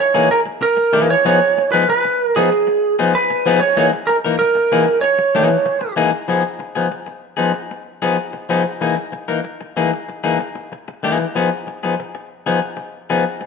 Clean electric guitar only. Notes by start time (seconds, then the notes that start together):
0.14 E3 A#3 D#4 G#4
0.30 muted clean electric guitar stroke
0.46 muted clean electric guitar stroke
0.61 muted clean electric guitar stroke
0.77 muted clean electric guitar stroke
0.93 E3 A#3 D#4 G#4
1.09 muted clean electric guitar stroke
1.25 F3 B3 D#4 G#4
1.58 muted clean electric guitar stroke
1.73 F3 B3 D#4 G#4
1.89 muted clean electric guitar stroke
2.04 muted clean electric guitar stroke
2.36 F3 B3 D#4 G#4
2.51 muted clean electric guitar stroke
2.67 muted clean electric guitar stroke
2.99 F3 B3 D#4 G#4
3.30 muted clean electric guitar stroke
3.46 F3 B3 D#4 G#4
3.62 muted clean electric guitar stroke
3.77 E3 A#3 D#4 G#4
3.93 muted clean electric guitar stroke
4.09 muted clean electric guitar stroke
4.25 E3 A#3 D#4 A#4
4.41 muted clean electric guitar stroke
4.55 muted clean electric guitar stroke
4.72 E3 A#3 D#4 G#4
4.88 muted clean electric guitar stroke
5.03 muted clean electric guitar stroke
5.19 muted clean electric guitar stroke
5.35 E3 A#3 D#4 G#4
5.50 muted clean electric guitar stroke
5.66 muted clean electric guitar stroke
5.81 muted clean electric guitar stroke
5.96 E3 A#3 D#4 G#4
6.12 muted clean electric guitar stroke
6.28 F3 B3 D#4 G#4
6.59 muted clean electric guitar stroke
6.75 F3 B3 D#4 G#4
6.91 muted clean electric guitar stroke
7.07 muted clean electric guitar stroke
7.37 F3 B3 D#4 G#4
7.71 muted clean electric guitar stroke
8.02 F3 B3 D#4 G#4
8.33 muted clean electric guitar stroke
8.49 F3 B3 D#4 G#4
8.64 muted clean electric guitar stroke
8.81 E3 A#3 D#4 G#4
9.12 muted clean electric guitar stroke
9.28 E3 A#3 D#4 A#4
9.44 muted clean electric guitar stroke
9.61 muted clean electric guitar stroke
9.77 E3 A#3 D#4 G#4
10.09 muted clean electric guitar stroke
10.24 E3 A#3 D#4 G#4
10.40 muted clean electric guitar stroke
10.55 muted clean electric guitar stroke
10.72 muted clean electric guitar stroke
10.88 muted clean electric guitar stroke
11.03 E3 A#3 D#4 G#4
11.20 muted clean electric guitar stroke
11.35 F3 B3 D#4 G#4
11.67 muted clean electric guitar stroke
11.83 F3 B3 D#4 G#4
12.00 muted clean electric guitar stroke
12.15 muted clean electric guitar stroke
12.46 F3 B3 D#4 G#4
12.77 muted clean electric guitar stroke
13.10 F3 B3 D#4 G#4
13.41 muted clean electric guitar stroke